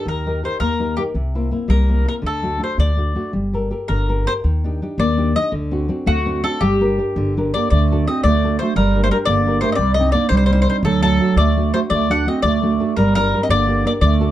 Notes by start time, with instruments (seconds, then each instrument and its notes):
0.05 upright bass D#2, nylon-string guitar D#3, mandolin A#4
0.26 nylon-string guitar D#4 G4 A#4
0.43 nylon-string guitar D#4 G4 A#4, mandolin C5
0.60 upright bass D#2, nylon-string guitar A#3, mandolin A#4
0.79 nylon-string guitar D#4 G4 A#4
0.97 nylon-string guitar D#4 G4 A#4, mandolin G4
1.14 upright bass C2, nylon-string guitar C3
1.35 nylon-string guitar A#3 C4 E4
1.51 nylon-string guitar A#3 C4 E4
1.68 upright bass C2, nylon-string guitar G3, mandolin A#4
1.88 nylon-string guitar A#3 C4 E4
2.05 nylon-string guitar A#3 C4 E4, mandolin A#4
2.22 upright bass D2, nylon-string guitar D3
2.26 mandolin A4
2.43 nylon-string guitar A3 D4 F#4
2.59 nylon-string guitar A3 D4 F#4
2.64 mandolin C5
2.78 upright bass D2, nylon-string guitar A3, mandolin D5
2.97 nylon-string guitar A3 D4 F#4
3.15 nylon-string guitar A3 D4 F#4
3.33 upright bass G1, nylon-string guitar G3
3.53 nylon-string guitar G4 A4 A#4
3.71 nylon-string guitar G4 A4 A#4
3.88 upright bass G1, nylon-string guitar D3, mandolin A#4
4.09 nylon-string guitar G4 A4 A#4
4.25 nylon-string guitar G4 A4 A#4, mandolin C5
4.44 upright bass D#2, nylon-string guitar D#3
4.64 nylon-string guitar D4 D#4 G4
4.82 nylon-string guitar D4 D#4 G4
4.98 upright bass D#2, nylon-string guitar A#3, mandolin D5
5.17 nylon-string guitar D4 D#4 G4
5.35 nylon-string guitar D4 D#4 G4, mandolin D#5
5.52 upright bass D2, nylon-string guitar D3
5.71 nylon-string guitar C4 D4 F#4
5.89 nylon-string guitar C4 D4 F#4
6.06 upright bass D2, nylon-string guitar A3, mandolin F#4
6.26 nylon-string guitar C4 D4 F#4
6.43 nylon-string guitar C4 D4 F#4, mandolin A4
6.61 upright bass G1, nylon-string guitar G3, mandolin G4
6.80 nylon-string guitar D4 G4 A#4
6.98 nylon-string guitar D4 G4 A#4
7.16 upright bass G1, nylon-string guitar D3
7.37 nylon-string guitar D4 G4 A#4
7.54 clarinet A#3, nylon-string guitar D4 G4 A#4, mandolin D5
7.70 upright bass D2, nylon-string guitar D3, clarinet A3, mandolin D5
7.91 nylon-string guitar D4 F#4 A4
8.07 clarinet C4, nylon-string guitar D4 F#4 A4, mandolin D#5
8.24 upright bass D2, nylon-string guitar A3, clarinet A3, mandolin D5
8.44 nylon-string guitar D4 F#4 A4
8.59 clarinet A3, nylon-string guitar D4 F#4 A4, mandolin C5
8.76 upright bass G1, clarinet G3, nylon-string guitar G3, mandolin A#4
8.95 nylon-string guitar D4 G4 A#4
9.03 clarinet A3, mandolin C5
9.09 clarinet G3, nylon-string guitar D4 G4 A#4, mandolin A#4
9.25 upright bass G1, nylon-string guitar D3, clarinet A#3, mandolin D5
9.46 nylon-string guitar D4 G4 A#4
9.61 clarinet A3, nylon-string guitar D4 G4 A#4, mandolin C5
9.72 clarinet C4, mandolin D5 D#5
9.79 upright bass C2, nylon-string guitar C3, clarinet G3
9.94 mandolin D#5
9.99 clarinet C4, nylon-string guitar C4 D4 D#4
10.12 clarinet A#3, nylon-string guitar C4 D4 D#4, mandolin D5
10.29 upright bass C2, clarinet G3, nylon-string guitar G3, mandolin C5
10.37 mandolin C5
10.46 mandolin C5
10.50 nylon-string guitar C4 D4 D#4, mandolin C5
10.62 mandolin C5
10.68 nylon-string guitar C4 D4 D#4, mandolin C5
10.83 upright bass D2, nylon-string guitar D3, clarinet F#3, mandolin A4
11.03 clarinet F#3, nylon-string guitar A3 D4 F#4, mandolin A4
11.20 nylon-string guitar A3 D4 F#4
11.36 upright bass D2, nylon-string guitar A3, clarinet A3, mandolin D5
11.57 nylon-string guitar A3 D4 F#4
11.73 nylon-string guitar A3 D4 F#4, clarinet A3, mandolin C5
11.90 upright bass D2, nylon-string guitar A3, clarinet A3, mandolin D5
12.09 nylon-string guitar A3 D4 F#4, clarinet D4, mandolin F#5
12.26 nylon-string guitar A3 D4 F#4, clarinet C4, mandolin D#5
12.42 upright bass D2, nylon-string guitar A3, clarinet A3, mandolin D5
12.63 nylon-string guitar A3 D4 F#4
12.80 nylon-string guitar A3 D4 F#4
12.97 upright bass G1, clarinet G3, nylon-string guitar G3, mandolin A#4
13.15 clarinet G3, nylon-string guitar D4 G4 A#4, mandolin A#4
13.34 nylon-string guitar D4 G4 A#4
13.42 clarinet C4, mandolin D#5
13.49 upright bass G1, nylon-string guitar D3, clarinet A#3, mandolin D5
13.67 nylon-string guitar D4 G4 A#4
13.85 clarinet A#3, nylon-string guitar D4 G4 A#4, mandolin D5
14.01 upright bass D2, nylon-string guitar D3, clarinet A3, mandolin D5
14.20 nylon-string guitar D4 F#4 A4